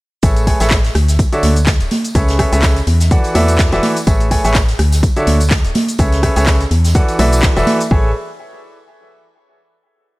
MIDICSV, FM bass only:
0, 0, Header, 1, 2, 480
1, 0, Start_track
1, 0, Key_signature, 3, "major"
1, 0, Tempo, 480000
1, 231, Time_signature, 4, 2, 24, 8
1, 10197, End_track
2, 0, Start_track
2, 0, Title_t, "FM bass"
2, 0, Program_c, 0, 39
2, 231, Note_on_c, 0, 33, 100
2, 538, Note_off_c, 0, 33, 0
2, 606, Note_on_c, 0, 33, 97
2, 898, Note_off_c, 0, 33, 0
2, 951, Note_on_c, 0, 38, 94
2, 1258, Note_off_c, 0, 38, 0
2, 1431, Note_on_c, 0, 38, 77
2, 1805, Note_on_c, 0, 26, 86
2, 1820, Note_off_c, 0, 38, 0
2, 1878, Note_off_c, 0, 26, 0
2, 2151, Note_on_c, 0, 37, 100
2, 2458, Note_off_c, 0, 37, 0
2, 2525, Note_on_c, 0, 37, 102
2, 2818, Note_off_c, 0, 37, 0
2, 2871, Note_on_c, 0, 40, 98
2, 3178, Note_off_c, 0, 40, 0
2, 3351, Note_on_c, 0, 40, 77
2, 3725, Note_on_c, 0, 28, 81
2, 3740, Note_off_c, 0, 40, 0
2, 3798, Note_off_c, 0, 28, 0
2, 4071, Note_on_c, 0, 33, 104
2, 4378, Note_off_c, 0, 33, 0
2, 4445, Note_on_c, 0, 33, 102
2, 4738, Note_off_c, 0, 33, 0
2, 4791, Note_on_c, 0, 38, 93
2, 5098, Note_off_c, 0, 38, 0
2, 5271, Note_on_c, 0, 38, 71
2, 5645, Note_on_c, 0, 26, 86
2, 5660, Note_off_c, 0, 38, 0
2, 5718, Note_off_c, 0, 26, 0
2, 5990, Note_on_c, 0, 37, 103
2, 6298, Note_off_c, 0, 37, 0
2, 6365, Note_on_c, 0, 37, 99
2, 6658, Note_off_c, 0, 37, 0
2, 6710, Note_on_c, 0, 40, 92
2, 7017, Note_off_c, 0, 40, 0
2, 7190, Note_on_c, 0, 35, 98
2, 7497, Note_off_c, 0, 35, 0
2, 7565, Note_on_c, 0, 28, 89
2, 7638, Note_off_c, 0, 28, 0
2, 7911, Note_on_c, 0, 33, 102
2, 8134, Note_off_c, 0, 33, 0
2, 10197, End_track
0, 0, End_of_file